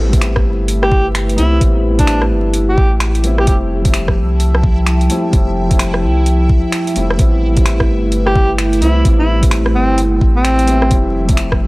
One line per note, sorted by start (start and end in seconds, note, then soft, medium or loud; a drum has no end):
0.00 0.47 A1 loud
0.00 0.09 G3 medium
0.00 3.48 A3 medium
0.00 0.12 B3 medium
0.00 0.15 C4 medium
0.00 0.10 E4 medium
0.00 3.48 E4 medium
0.00 11.67 E4 medium
0.00 11.67 E5 medium
0.00 1.11 G5 medium
0.00 0.97 A5 medium
0.09 1.34 G3 medium
0.09 1.35 B3 medium
0.09 kick medium
0.09 closed hi-hat medium
0.15 1.37 C4 medium
0.15 1.38 E4 medium
0.21 finger snap medium
0.21 closed hi-hat medium
0.34 3.48 B4 medium
0.34 kick medium
0.34 cross-stick medium
0.45 1.37 G1 medium
0.68 closed hi-hat medium
0.83 1.07 G4 medium
0.83 cross-stick medium
0.92 kick loud
1.15 finger snap loud
1.15 closed hi-hat medium
1.29 closed hi-hat soft
1.36 1.60 C2 medium
1.36 1.58 G3 medium
1.36 1.59 B3 medium
1.36 1.59 C4 medium
1.36 1.62 E4 medium
1.36 closed hi-hat medium
1.40 1.60 E4 medium
1.59 2.32 A1 loud
1.59 1.94 G3 medium
1.59 1.95 B3 medium
1.59 1.96 C4 medium
1.59 1.96 E4 loud
1.59 kick loud
1.59 closed hi-hat medium
1.95 3.20 G3 medium
1.95 3.21 B3 medium
1.95 2.23 D4 medium
1.95 kick loud
1.95 closed hi-hat medium
2.01 3.23 C4 medium
2.01 3.24 E4 medium
2.07 finger snap loud
2.07 closed hi-hat medium
2.22 cross-stick medium
2.31 2.76 G1 medium
2.54 closed hi-hat medium
2.69 2.93 G4 medium
2.78 3.46 A1 medium
2.78 kick loud
3.00 finger snap loud
3.00 closed hi-hat medium
3.15 closed hi-hat soft
3.22 3.44 G3 medium
3.22 3.45 B3 medium
3.22 3.46 C4 medium
3.22 3.46 E4 medium
3.22 closed hi-hat medium
3.38 3.45 G4 medium
3.38 cross-stick medium
3.45 4.19 F1 loud
3.45 7.20 F3 medium
3.45 3.80 G3 medium
3.45 3.81 A3 medium
3.45 3.82 C4 medium
3.45 3.57 G4 medium
3.45 kick loud
3.45 closed hi-hat medium
3.49 3.82 E4 loud
3.69 8.54 A5 medium
3.76 8.63 G5 medium
3.82 5.06 G3 medium
3.82 5.07 A3 medium
3.82 kick loud
3.82 closed hi-hat medium
3.87 5.09 C4 medium
3.87 5.10 E4 loud
3.94 finger snap loud
3.94 closed hi-hat medium
4.08 kick medium
4.08 cross-stick medium
4.17 5.09 C2 medium
4.40 closed hi-hat medium
4.55 cross-stick medium
4.64 kick loud
4.86 finger snap loud
4.86 closed hi-hat medium
5.01 closed hi-hat soft
5.08 5.29 G3 medium
5.08 5.31 A3 medium
5.08 5.31 C4 medium
5.08 5.32 E4 medium
5.08 closed hi-hat medium
5.31 6.04 F1 loud
5.31 5.65 G3 medium
5.31 5.67 A3 medium
5.31 5.68 C4 medium
5.31 kick loud
5.31 closed hi-hat medium
5.35 5.68 E4 loud
5.67 6.92 G3 medium
5.67 6.93 A3 medium
5.71 6.94 C4 medium
5.71 6.96 E4 loud
5.71 kick loud
5.71 closed hi-hat medium
5.79 finger snap loud
5.79 closed hi-hat medium
5.94 cross-stick medium
6.03 6.62 C2 medium
6.26 closed hi-hat soft
6.50 kick loud
6.72 finger snap loud
6.72 closed hi-hat medium
6.87 closed hi-hat soft
6.94 7.18 F1 medium
6.94 7.16 G3 medium
6.94 7.17 A3 medium
6.94 7.17 C4 medium
6.94 7.18 E4 medium
6.94 closed hi-hat medium
7.10 cross-stick medium
7.17 7.91 A1 loud
7.17 7.52 G3 medium
7.17 10.92 A3 medium
7.17 7.53 B3 medium
7.17 7.54 C4 medium
7.17 7.54 E4 loud
7.17 kick loud
7.17 closed hi-hat soft
7.42 10.91 B4 medium
7.53 8.78 G3 medium
7.53 8.79 B3 medium
7.53 kick loud
7.53 closed hi-hat soft
7.59 8.81 C4 medium
7.59 8.82 E4 medium
7.66 10.91 E4 medium
7.66 finger snap medium
7.66 closed hi-hat soft
7.80 kick medium
7.80 cross-stick medium
7.89 8.81 G1 medium
8.12 closed hi-hat soft
8.26 8.51 G4 medium
8.26 cross-stick medium
8.36 kick loud
8.58 finger snap loud
8.58 closed hi-hat medium
8.73 closed hi-hat soft
8.80 9.04 C2 medium
8.80 9.02 G3 medium
8.80 9.03 B3 medium
8.80 9.03 C4 medium
8.80 9.06 E4 medium
8.80 9.04 E4 medium
8.80 closed hi-hat medium
9.03 9.76 A1 loud
9.03 9.38 G3 medium
9.03 9.39 B3 medium
9.03 9.40 C4 medium
9.03 9.40 E4 loud
9.03 kick loud
9.03 closed hi-hat medium
9.19 9.44 E4 medium
9.39 10.64 G3 medium
9.39 10.65 B4 medium
9.39 kick loud
9.39 closed hi-hat medium
9.45 10.67 C4 medium
9.45 10.68 E4 medium
9.51 finger snap loud
9.51 closed hi-hat soft
9.66 cross-stick medium
9.75 10.20 G1 medium
9.75 10.00 C4 medium
9.98 closed hi-hat soft
10.21 10.90 A1 medium
10.21 kick loud
10.36 10.97 C4 loud
10.45 finger snap loud
10.45 closed hi-hat medium
10.59 closed hi-hat soft
10.66 10.88 G3 medium
10.66 10.89 B3 medium
10.66 10.89 C4 medium
10.66 closed hi-hat medium
10.70 10.90 E4 medium
10.82 cross-stick medium
10.90 11.62 F1 loud
10.90 11.67 F3 loud
10.90 11.23 G3 loud
10.90 11.25 A3 medium
10.90 11.26 C4 medium
10.90 11.27 E4 loud
10.90 kick loud
10.90 closed hi-hat medium
11.25 11.67 G3 medium
11.25 11.67 A3 medium
11.25 closed hi-hat medium
11.29 11.67 C4 medium
11.29 11.67 E4 loud
11.29 kick loud
11.37 finger snap loud
11.37 closed hi-hat soft
11.52 kick medium
11.52 cross-stick medium
11.61 11.67 C2 medium